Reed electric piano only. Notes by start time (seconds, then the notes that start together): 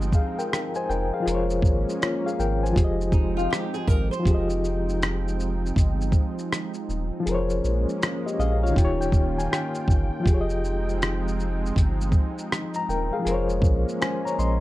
Already playing: F3 F4 G4 G#4 D#5
0.15 G#4 F5
0.39 A#4 G5
0.76 C5 G#5
0.90 A#4 G5
1.14 G#4 F5
1.20 F3 F4
1.26 G#4 A#4
1.32 C5 C#5
2.02 F4 C#5
2.26 G#4 F5
2.40 A#4 G5
2.63 C5 G#5
2.70 F3 F4
2.77 G4 G#4
2.84 D#5
4.20 F3 F4
4.27 G4 G#4
4.34 D#5
7.20 F3 F4
7.26 G#4 A#4
7.32 C5 C#5
8.26 G4 D#5
8.40 G#4 D#5 F5
8.63 F4 C#5 F5
8.70 D#3 D#4
8.77 F4 G4 G5
8.85 C#5
9.01 G5
9.38 G#5
9.52 G5
10.20 F3 F4
10.27 G4 G#4
10.34 C#5
10.41 D#5
12.76 A#5
12.89 A#4 G5
13.13 G#4 F5
13.19 F3 F4
13.25 G#4 A#4
13.31 C5 C#5
14.01 C5 G#5
14.25 C#5 A#5
14.39 D#5 C6